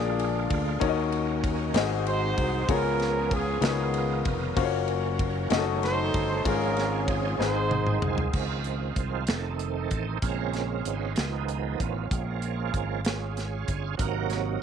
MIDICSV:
0, 0, Header, 1, 6, 480
1, 0, Start_track
1, 0, Key_signature, -5, "major"
1, 0, Tempo, 627615
1, 623, Time_signature, 6, 3, 24, 8
1, 11187, End_track
2, 0, Start_track
2, 0, Title_t, "Horn section"
2, 0, Program_c, 0, 61
2, 0, Note_on_c, 0, 62, 57
2, 0, Note_on_c, 0, 65, 55
2, 0, Note_on_c, 0, 68, 75
2, 410, Note_off_c, 0, 68, 0
2, 597, Note_off_c, 0, 65, 0
2, 598, Note_off_c, 0, 62, 0
2, 1586, Note_on_c, 0, 63, 76
2, 1586, Note_on_c, 0, 72, 105
2, 1588, Note_on_c, 0, 66, 78
2, 2030, Note_off_c, 0, 63, 0
2, 2030, Note_off_c, 0, 72, 0
2, 2032, Note_off_c, 0, 66, 0
2, 2061, Note_on_c, 0, 65, 75
2, 2063, Note_on_c, 0, 70, 104
2, 2539, Note_off_c, 0, 70, 0
2, 2545, Note_on_c, 0, 68, 87
2, 2746, Note_off_c, 0, 65, 0
2, 2780, Note_off_c, 0, 68, 0
2, 2786, Note_on_c, 0, 65, 61
2, 2787, Note_on_c, 0, 59, 56
2, 2790, Note_on_c, 0, 68, 81
2, 3291, Note_off_c, 0, 68, 0
2, 3469, Note_off_c, 0, 59, 0
2, 3469, Note_off_c, 0, 65, 0
2, 4455, Note_on_c, 0, 72, 112
2, 4461, Note_on_c, 0, 69, 80
2, 4462, Note_on_c, 0, 63, 83
2, 4903, Note_off_c, 0, 72, 0
2, 4906, Note_off_c, 0, 63, 0
2, 4906, Note_off_c, 0, 69, 0
2, 4935, Note_on_c, 0, 70, 101
2, 4937, Note_on_c, 0, 61, 75
2, 4942, Note_on_c, 0, 65, 76
2, 5414, Note_off_c, 0, 70, 0
2, 5624, Note_off_c, 0, 61, 0
2, 5626, Note_off_c, 0, 65, 0
2, 5658, Note_on_c, 0, 72, 106
2, 5660, Note_on_c, 0, 68, 78
2, 5665, Note_on_c, 0, 63, 79
2, 6165, Note_off_c, 0, 72, 0
2, 6346, Note_off_c, 0, 68, 0
2, 6349, Note_off_c, 0, 63, 0
2, 11187, End_track
3, 0, Start_track
3, 0, Title_t, "Grand piano"
3, 0, Program_c, 1, 0
3, 0, Note_on_c, 1, 46, 60
3, 0, Note_on_c, 1, 58, 61
3, 0, Note_on_c, 1, 62, 60
3, 0, Note_on_c, 1, 65, 58
3, 0, Note_on_c, 1, 68, 55
3, 0, Note_on_c, 1, 74, 69
3, 60, Control_c, 1, 64, 127
3, 592, Note_off_c, 1, 46, 0
3, 611, Note_on_c, 1, 63, 71
3, 612, Note_on_c, 1, 61, 77
3, 614, Note_on_c, 1, 51, 75
3, 617, Note_on_c, 1, 66, 65
3, 618, Note_on_c, 1, 70, 67
3, 620, Note_off_c, 1, 62, 0
3, 622, Note_off_c, 1, 58, 0
3, 623, Note_off_c, 1, 65, 0
3, 624, Note_on_c, 1, 73, 68
3, 626, Note_off_c, 1, 68, 0
3, 627, Note_off_c, 1, 74, 0
3, 633, Control_c, 1, 64, 0
3, 669, Note_on_c, 1, 75, 78
3, 673, Note_off_c, 1, 73, 0
3, 750, Control_c, 1, 64, 127
3, 1305, Note_off_c, 1, 51, 0
3, 1319, Note_off_c, 1, 63, 0
3, 1323, Note_off_c, 1, 66, 0
3, 1329, Note_off_c, 1, 75, 0
3, 1330, Note_on_c, 1, 60, 79
3, 1330, Note_on_c, 1, 63, 67
3, 1334, Note_off_c, 1, 61, 0
3, 1334, Note_on_c, 1, 66, 69
3, 1336, Note_on_c, 1, 68, 70
3, 1337, Note_off_c, 1, 70, 0
3, 1340, Note_on_c, 1, 44, 73
3, 1341, Note_on_c, 1, 75, 82
3, 1348, Control_c, 1, 64, 0
3, 1473, Control_c, 1, 64, 127
3, 2027, Note_off_c, 1, 44, 0
3, 2052, Note_off_c, 1, 60, 0
3, 2052, Note_off_c, 1, 68, 0
3, 2053, Note_off_c, 1, 63, 0
3, 2054, Note_on_c, 1, 59, 61
3, 2055, Note_off_c, 1, 66, 0
3, 2056, Note_on_c, 1, 61, 58
3, 2056, Note_on_c, 1, 65, 57
3, 2057, Note_on_c, 1, 49, 60
3, 2058, Note_off_c, 1, 75, 0
3, 2063, Note_on_c, 1, 68, 60
3, 2063, Note_on_c, 1, 73, 70
3, 2067, Control_c, 1, 64, 0
3, 2183, Control_c, 1, 64, 127
3, 2745, Note_off_c, 1, 49, 0
3, 2751, Note_off_c, 1, 59, 0
3, 2754, Note_off_c, 1, 65, 0
3, 2762, Note_on_c, 1, 59, 64
3, 2765, Note_on_c, 1, 49, 60
3, 2766, Note_on_c, 1, 65, 56
3, 2767, Note_on_c, 1, 63, 62
3, 2770, Note_on_c, 1, 70, 58
3, 2775, Note_off_c, 1, 61, 0
3, 2776, Note_on_c, 1, 71, 57
3, 2778, Note_off_c, 1, 68, 0
3, 2778, Note_off_c, 1, 73, 0
3, 2785, Control_c, 1, 64, 0
3, 2823, Note_on_c, 1, 73, 70
3, 2826, Note_off_c, 1, 71, 0
3, 2937, Control_c, 1, 64, 127
3, 3458, Note_off_c, 1, 49, 0
3, 3486, Note_off_c, 1, 65, 0
3, 3487, Note_off_c, 1, 59, 0
3, 3490, Note_off_c, 1, 63, 0
3, 3491, Note_off_c, 1, 70, 0
3, 3491, Note_on_c, 1, 58, 79
3, 3493, Note_on_c, 1, 61, 68
3, 3496, Note_on_c, 1, 66, 75
3, 3497, Note_on_c, 1, 65, 73
3, 3502, Control_c, 1, 64, 0
3, 3502, Note_on_c, 1, 72, 68
3, 3518, Note_off_c, 1, 73, 0
3, 3548, Note_off_c, 1, 72, 0
3, 3553, Note_on_c, 1, 73, 87
3, 3660, Control_c, 1, 64, 127
3, 4199, Note_off_c, 1, 61, 0
3, 4205, Note_on_c, 1, 56, 64
3, 4210, Note_off_c, 1, 66, 0
3, 4210, Note_on_c, 1, 61, 67
3, 4211, Note_off_c, 1, 58, 0
3, 4213, Note_on_c, 1, 63, 71
3, 4215, Note_off_c, 1, 65, 0
3, 4219, Note_on_c, 1, 75, 88
3, 4222, Note_on_c, 1, 66, 75
3, 4224, Control_c, 1, 64, 0
3, 4242, Note_off_c, 1, 73, 0
3, 4258, Note_on_c, 1, 57, 77
3, 4259, Note_off_c, 1, 56, 0
3, 4337, Control_c, 1, 64, 127
3, 4913, Note_off_c, 1, 61, 0
3, 4925, Note_on_c, 1, 61, 65
3, 4932, Note_off_c, 1, 63, 0
3, 4935, Note_off_c, 1, 75, 0
3, 4935, Note_on_c, 1, 65, 64
3, 4936, Note_on_c, 1, 44, 63
3, 4937, Note_off_c, 1, 66, 0
3, 4942, Control_c, 1, 64, 0
3, 4943, Note_on_c, 1, 68, 69
3, 4955, Note_off_c, 1, 57, 0
3, 5093, Control_c, 1, 64, 127
3, 5624, Note_off_c, 1, 44, 0
3, 5647, Note_on_c, 1, 60, 62
3, 5649, Note_off_c, 1, 61, 0
3, 5652, Note_off_c, 1, 68, 0
3, 5654, Note_off_c, 1, 65, 0
3, 5658, Note_on_c, 1, 63, 60
3, 5661, Note_on_c, 1, 44, 63
3, 5662, Control_c, 1, 64, 0
3, 5663, Note_on_c, 1, 68, 71
3, 5778, Control_c, 1, 64, 127
3, 6347, Note_off_c, 1, 44, 0
3, 6370, Note_off_c, 1, 60, 0
3, 6375, Note_off_c, 1, 63, 0
3, 6378, Note_off_c, 1, 68, 0
3, 6384, Control_c, 1, 64, 0
3, 11187, End_track
4, 0, Start_track
4, 0, Title_t, "Tonewheel organ"
4, 0, Program_c, 2, 16
4, 0, Note_on_c, 2, 50, 64
4, 0, Note_on_c, 2, 56, 62
4, 0, Note_on_c, 2, 58, 59
4, 0, Note_on_c, 2, 65, 70
4, 612, Note_off_c, 2, 56, 0
4, 625, Note_off_c, 2, 50, 0
4, 626, Note_off_c, 2, 65, 0
4, 637, Note_on_c, 2, 61, 59
4, 640, Note_on_c, 2, 51, 61
4, 642, Note_on_c, 2, 66, 68
4, 1333, Note_on_c, 2, 56, 59
4, 1335, Note_off_c, 2, 58, 0
4, 1336, Note_on_c, 2, 60, 59
4, 1340, Note_off_c, 2, 61, 0
4, 2047, Note_off_c, 2, 56, 0
4, 2048, Note_off_c, 2, 60, 0
4, 2049, Note_on_c, 2, 53, 62
4, 2052, Note_off_c, 2, 51, 0
4, 2053, Note_off_c, 2, 66, 0
4, 2056, Note_on_c, 2, 61, 58
4, 2056, Note_on_c, 2, 68, 71
4, 2057, Note_on_c, 2, 59, 61
4, 2764, Note_off_c, 2, 53, 0
4, 2768, Note_off_c, 2, 61, 0
4, 2768, Note_off_c, 2, 68, 0
4, 2774, Note_on_c, 2, 65, 68
4, 2776, Note_on_c, 2, 51, 66
4, 2780, Note_on_c, 2, 70, 58
4, 3479, Note_off_c, 2, 59, 0
4, 3486, Note_off_c, 2, 65, 0
4, 3487, Note_off_c, 2, 51, 0
4, 3490, Note_on_c, 2, 61, 59
4, 3492, Note_on_c, 2, 54, 64
4, 4201, Note_off_c, 2, 70, 0
4, 4205, Note_off_c, 2, 54, 0
4, 4213, Note_on_c, 2, 57, 62
4, 4218, Note_on_c, 2, 51, 66
4, 4925, Note_off_c, 2, 57, 0
4, 4928, Note_off_c, 2, 51, 0
4, 4934, Note_on_c, 2, 56, 62
4, 4939, Note_on_c, 2, 53, 65
4, 4939, Note_on_c, 2, 68, 71
4, 5363, Note_on_c, 2, 65, 62
4, 5408, Note_off_c, 2, 56, 0
4, 5411, Note_on_c, 2, 63, 83
4, 5414, Note_off_c, 2, 65, 0
4, 5417, Note_on_c, 2, 56, 62
4, 5418, Note_on_c, 2, 72, 61
4, 5629, Note_off_c, 2, 61, 0
4, 5649, Note_off_c, 2, 53, 0
4, 5669, Note_on_c, 2, 51, 63
4, 5671, Note_on_c, 2, 60, 57
4, 6095, Note_on_c, 2, 64, 63
4, 6098, Note_off_c, 2, 63, 0
4, 6105, Note_off_c, 2, 56, 0
4, 6105, Note_off_c, 2, 72, 0
4, 6134, Note_off_c, 2, 60, 0
4, 6135, Note_on_c, 2, 65, 84
4, 6141, Note_off_c, 2, 64, 0
4, 6141, Note_on_c, 2, 56, 64
4, 6143, Note_on_c, 2, 60, 62
4, 6362, Note_off_c, 2, 68, 0
4, 6374, Note_off_c, 2, 51, 0
4, 6386, Note_on_c, 2, 51, 43
4, 6389, Note_off_c, 2, 60, 0
4, 6390, Note_on_c, 2, 53, 41
4, 6398, Note_on_c, 2, 60, 49
4, 7067, Note_off_c, 2, 56, 0
4, 7070, Note_off_c, 2, 51, 0
4, 7072, Note_off_c, 2, 53, 0
4, 7076, Note_off_c, 2, 60, 0
4, 7098, Note_on_c, 2, 51, 46
4, 7103, Note_on_c, 2, 60, 56
4, 7104, Note_on_c, 2, 57, 41
4, 7107, Note_on_c, 2, 69, 70
4, 7112, Note_on_c, 2, 63, 52
4, 7124, Note_off_c, 2, 65, 0
4, 7576, Note_off_c, 2, 69, 0
4, 7586, Note_on_c, 2, 69, 74
4, 7691, Note_off_c, 2, 69, 0
4, 7787, Note_off_c, 2, 51, 0
4, 7789, Note_off_c, 2, 57, 0
4, 7792, Note_off_c, 2, 60, 0
4, 7794, Note_off_c, 2, 63, 0
4, 7818, Note_on_c, 2, 49, 43
4, 7824, Note_on_c, 2, 56, 40
4, 7825, Note_on_c, 2, 70, 75
4, 7827, Note_on_c, 2, 60, 49
4, 7828, Note_on_c, 2, 61, 57
4, 7829, Note_on_c, 2, 65, 53
4, 8303, Note_off_c, 2, 56, 0
4, 8303, Note_on_c, 2, 63, 81
4, 8312, Note_on_c, 2, 56, 54
4, 8313, Note_on_c, 2, 59, 54
4, 8315, Note_off_c, 2, 70, 0
4, 8507, Note_off_c, 2, 49, 0
4, 8511, Note_off_c, 2, 60, 0
4, 8512, Note_off_c, 2, 61, 0
4, 8513, Note_off_c, 2, 65, 0
4, 8525, Note_off_c, 2, 59, 0
4, 8528, Note_on_c, 2, 51, 46
4, 8529, Note_on_c, 2, 53, 44
4, 8534, Note_on_c, 2, 59, 51
4, 8995, Note_off_c, 2, 56, 0
4, 9014, Note_on_c, 2, 65, 78
4, 9021, Note_on_c, 2, 61, 59
4, 9042, Note_off_c, 2, 63, 0
4, 9223, Note_off_c, 2, 51, 0
4, 9223, Note_off_c, 2, 53, 0
4, 9226, Note_off_c, 2, 59, 0
4, 9257, Note_on_c, 2, 53, 47
4, 9262, Note_on_c, 2, 56, 43
4, 9266, Note_on_c, 2, 58, 52
4, 9948, Note_off_c, 2, 53, 0
4, 9950, Note_off_c, 2, 56, 0
4, 9950, Note_off_c, 2, 61, 0
4, 9952, Note_off_c, 2, 58, 0
4, 9971, Note_off_c, 2, 65, 0
4, 9979, Note_on_c, 2, 68, 77
4, 9980, Note_on_c, 2, 65, 60
4, 9983, Note_on_c, 2, 61, 59
4, 10669, Note_off_c, 2, 68, 0
4, 10670, Note_off_c, 2, 65, 0
4, 10671, Note_off_c, 2, 61, 0
4, 10688, Note_on_c, 2, 54, 45
4, 10699, Note_on_c, 2, 58, 44
4, 10700, Note_on_c, 2, 48, 51
4, 10703, Note_on_c, 2, 63, 61
4, 10704, Note_on_c, 2, 70, 82
4, 10705, Note_on_c, 2, 66, 60
4, 10935, Note_on_c, 2, 73, 91
4, 10949, Note_off_c, 2, 70, 0
4, 11044, Note_off_c, 2, 73, 0
4, 11166, Note_off_c, 2, 66, 0
4, 11187, Note_off_c, 2, 48, 0
4, 11187, Note_off_c, 2, 54, 0
4, 11187, Note_off_c, 2, 58, 0
4, 11187, Note_off_c, 2, 63, 0
4, 11187, End_track
5, 0, Start_track
5, 0, Title_t, "Fingered electric bass"
5, 0, Program_c, 3, 33
5, 0, Note_on_c, 3, 34, 92
5, 353, Note_off_c, 3, 34, 0
5, 385, Note_on_c, 3, 38, 81
5, 604, Note_off_c, 3, 38, 0
5, 619, Note_on_c, 3, 39, 91
5, 1307, Note_off_c, 3, 39, 0
5, 1329, Note_on_c, 3, 32, 92
5, 1782, Note_off_c, 3, 32, 0
5, 1821, Note_on_c, 3, 36, 88
5, 2039, Note_off_c, 3, 36, 0
5, 2054, Note_on_c, 3, 37, 104
5, 2743, Note_off_c, 3, 37, 0
5, 2762, Note_on_c, 3, 37, 99
5, 3217, Note_off_c, 3, 37, 0
5, 3256, Note_on_c, 3, 29, 78
5, 3476, Note_off_c, 3, 29, 0
5, 3490, Note_on_c, 3, 30, 104
5, 4180, Note_off_c, 3, 30, 0
5, 4209, Note_on_c, 3, 30, 100
5, 4660, Note_off_c, 3, 30, 0
5, 4697, Note_on_c, 3, 31, 78
5, 4916, Note_off_c, 3, 31, 0
5, 4932, Note_on_c, 3, 32, 102
5, 5622, Note_off_c, 3, 32, 0
5, 5650, Note_on_c, 3, 32, 94
5, 6101, Note_off_c, 3, 32, 0
5, 6133, Note_on_c, 3, 36, 82
5, 6354, Note_off_c, 3, 36, 0
5, 6374, Note_on_c, 3, 37, 88
5, 6824, Note_off_c, 3, 37, 0
5, 6853, Note_on_c, 3, 36, 68
5, 7074, Note_off_c, 3, 36, 0
5, 7103, Note_on_c, 3, 29, 78
5, 7549, Note_off_c, 3, 29, 0
5, 7580, Note_on_c, 3, 33, 74
5, 7799, Note_off_c, 3, 33, 0
5, 7819, Note_on_c, 3, 34, 85
5, 8267, Note_off_c, 3, 34, 0
5, 8304, Note_on_c, 3, 32, 70
5, 8521, Note_off_c, 3, 32, 0
5, 8548, Note_on_c, 3, 37, 88
5, 8992, Note_off_c, 3, 37, 0
5, 9024, Note_on_c, 3, 33, 72
5, 9242, Note_off_c, 3, 33, 0
5, 9262, Note_on_c, 3, 34, 91
5, 9710, Note_off_c, 3, 34, 0
5, 9742, Note_on_c, 3, 32, 80
5, 10430, Note_off_c, 3, 32, 0
5, 10465, Note_on_c, 3, 31, 72
5, 10683, Note_off_c, 3, 31, 0
5, 10700, Note_on_c, 3, 32, 92
5, 11149, Note_off_c, 3, 32, 0
5, 11187, End_track
6, 0, Start_track
6, 0, Title_t, "Drums"
6, 149, Note_on_c, 9, 51, 44
6, 225, Note_off_c, 9, 51, 0
6, 385, Note_on_c, 9, 51, 52
6, 387, Note_on_c, 9, 36, 83
6, 461, Note_off_c, 9, 51, 0
6, 463, Note_off_c, 9, 36, 0
6, 621, Note_on_c, 9, 51, 74
6, 623, Note_on_c, 9, 36, 104
6, 698, Note_off_c, 9, 51, 0
6, 700, Note_off_c, 9, 36, 0
6, 859, Note_on_c, 9, 51, 38
6, 936, Note_off_c, 9, 51, 0
6, 1099, Note_on_c, 9, 36, 93
6, 1103, Note_on_c, 9, 51, 52
6, 1176, Note_off_c, 9, 36, 0
6, 1179, Note_off_c, 9, 51, 0
6, 1332, Note_on_c, 9, 51, 70
6, 1345, Note_on_c, 9, 38, 108
6, 1409, Note_off_c, 9, 51, 0
6, 1422, Note_off_c, 9, 38, 0
6, 1580, Note_on_c, 9, 51, 45
6, 1656, Note_off_c, 9, 51, 0
6, 1817, Note_on_c, 9, 51, 54
6, 1819, Note_on_c, 9, 36, 83
6, 1894, Note_off_c, 9, 51, 0
6, 1895, Note_off_c, 9, 36, 0
6, 2054, Note_on_c, 9, 51, 77
6, 2055, Note_on_c, 9, 36, 106
6, 2131, Note_off_c, 9, 36, 0
6, 2131, Note_off_c, 9, 51, 0
6, 2291, Note_on_c, 9, 51, 38
6, 2303, Note_on_c, 9, 38, 34
6, 2368, Note_off_c, 9, 51, 0
6, 2380, Note_off_c, 9, 38, 0
6, 2533, Note_on_c, 9, 36, 96
6, 2535, Note_on_c, 9, 51, 56
6, 2610, Note_off_c, 9, 36, 0
6, 2611, Note_off_c, 9, 51, 0
6, 2768, Note_on_c, 9, 51, 70
6, 2781, Note_on_c, 9, 38, 115
6, 2845, Note_off_c, 9, 51, 0
6, 2858, Note_off_c, 9, 38, 0
6, 3011, Note_on_c, 9, 51, 45
6, 3088, Note_off_c, 9, 51, 0
6, 3252, Note_on_c, 9, 51, 51
6, 3255, Note_on_c, 9, 36, 89
6, 3328, Note_off_c, 9, 51, 0
6, 3331, Note_off_c, 9, 36, 0
6, 3492, Note_on_c, 9, 51, 74
6, 3493, Note_on_c, 9, 36, 106
6, 3568, Note_off_c, 9, 51, 0
6, 3569, Note_off_c, 9, 36, 0
6, 3730, Note_on_c, 9, 51, 39
6, 3806, Note_off_c, 9, 51, 0
6, 3972, Note_on_c, 9, 36, 93
6, 3974, Note_on_c, 9, 51, 56
6, 4049, Note_off_c, 9, 36, 0
6, 4050, Note_off_c, 9, 51, 0
6, 4209, Note_on_c, 9, 51, 68
6, 4222, Note_on_c, 9, 38, 105
6, 4285, Note_off_c, 9, 51, 0
6, 4298, Note_off_c, 9, 38, 0
6, 4459, Note_on_c, 9, 51, 44
6, 4467, Note_on_c, 9, 38, 38
6, 4535, Note_off_c, 9, 51, 0
6, 4543, Note_off_c, 9, 38, 0
6, 4697, Note_on_c, 9, 51, 54
6, 4698, Note_on_c, 9, 36, 85
6, 4773, Note_off_c, 9, 51, 0
6, 4775, Note_off_c, 9, 36, 0
6, 4937, Note_on_c, 9, 36, 106
6, 4938, Note_on_c, 9, 51, 75
6, 5013, Note_off_c, 9, 36, 0
6, 5015, Note_off_c, 9, 51, 0
6, 5175, Note_on_c, 9, 51, 39
6, 5187, Note_on_c, 9, 38, 36
6, 5251, Note_off_c, 9, 51, 0
6, 5263, Note_off_c, 9, 38, 0
6, 5414, Note_on_c, 9, 36, 93
6, 5416, Note_on_c, 9, 51, 52
6, 5491, Note_off_c, 9, 36, 0
6, 5492, Note_off_c, 9, 51, 0
6, 5665, Note_on_c, 9, 38, 58
6, 5741, Note_off_c, 9, 38, 0
6, 5897, Note_on_c, 9, 48, 71
6, 5973, Note_off_c, 9, 48, 0
6, 6015, Note_on_c, 9, 47, 67
6, 6092, Note_off_c, 9, 47, 0
6, 6135, Note_on_c, 9, 45, 93
6, 6211, Note_off_c, 9, 45, 0
6, 6254, Note_on_c, 9, 43, 87
6, 6330, Note_off_c, 9, 43, 0
6, 6372, Note_on_c, 9, 49, 73
6, 6376, Note_on_c, 9, 36, 88
6, 6449, Note_off_c, 9, 49, 0
6, 6452, Note_off_c, 9, 36, 0
6, 6610, Note_on_c, 9, 42, 39
6, 6687, Note_off_c, 9, 42, 0
6, 6854, Note_on_c, 9, 42, 56
6, 6855, Note_on_c, 9, 36, 82
6, 6930, Note_off_c, 9, 42, 0
6, 6932, Note_off_c, 9, 36, 0
6, 7089, Note_on_c, 9, 42, 72
6, 7101, Note_on_c, 9, 38, 94
6, 7165, Note_off_c, 9, 42, 0
6, 7178, Note_off_c, 9, 38, 0
6, 7337, Note_on_c, 9, 42, 49
6, 7414, Note_off_c, 9, 42, 0
6, 7577, Note_on_c, 9, 42, 52
6, 7581, Note_on_c, 9, 36, 72
6, 7654, Note_off_c, 9, 42, 0
6, 7657, Note_off_c, 9, 36, 0
6, 7817, Note_on_c, 9, 42, 73
6, 7819, Note_on_c, 9, 36, 90
6, 7894, Note_off_c, 9, 42, 0
6, 7896, Note_off_c, 9, 36, 0
6, 8057, Note_on_c, 9, 42, 39
6, 8069, Note_on_c, 9, 38, 29
6, 8133, Note_off_c, 9, 42, 0
6, 8145, Note_off_c, 9, 38, 0
6, 8301, Note_on_c, 9, 42, 58
6, 8378, Note_off_c, 9, 42, 0
6, 8535, Note_on_c, 9, 42, 75
6, 8548, Note_on_c, 9, 38, 93
6, 8611, Note_off_c, 9, 42, 0
6, 8624, Note_off_c, 9, 38, 0
6, 8783, Note_on_c, 9, 42, 49
6, 8860, Note_off_c, 9, 42, 0
6, 9025, Note_on_c, 9, 36, 72
6, 9025, Note_on_c, 9, 42, 55
6, 9102, Note_off_c, 9, 36, 0
6, 9102, Note_off_c, 9, 42, 0
6, 9263, Note_on_c, 9, 36, 91
6, 9264, Note_on_c, 9, 42, 77
6, 9340, Note_off_c, 9, 36, 0
6, 9340, Note_off_c, 9, 42, 0
6, 9499, Note_on_c, 9, 42, 41
6, 9576, Note_off_c, 9, 42, 0
6, 9743, Note_on_c, 9, 36, 81
6, 9746, Note_on_c, 9, 42, 59
6, 9819, Note_off_c, 9, 36, 0
6, 9822, Note_off_c, 9, 42, 0
6, 9978, Note_on_c, 9, 42, 75
6, 9991, Note_on_c, 9, 38, 94
6, 10055, Note_off_c, 9, 42, 0
6, 10068, Note_off_c, 9, 38, 0
6, 10226, Note_on_c, 9, 42, 49
6, 10234, Note_on_c, 9, 38, 31
6, 10302, Note_off_c, 9, 42, 0
6, 10310, Note_off_c, 9, 38, 0
6, 10462, Note_on_c, 9, 42, 54
6, 10465, Note_on_c, 9, 36, 74
6, 10538, Note_off_c, 9, 42, 0
6, 10541, Note_off_c, 9, 36, 0
6, 10699, Note_on_c, 9, 42, 77
6, 10702, Note_on_c, 9, 36, 92
6, 10776, Note_off_c, 9, 42, 0
6, 10779, Note_off_c, 9, 36, 0
6, 10935, Note_on_c, 9, 42, 44
6, 10947, Note_on_c, 9, 38, 30
6, 11012, Note_off_c, 9, 42, 0
6, 11024, Note_off_c, 9, 38, 0
6, 11187, End_track
0, 0, End_of_file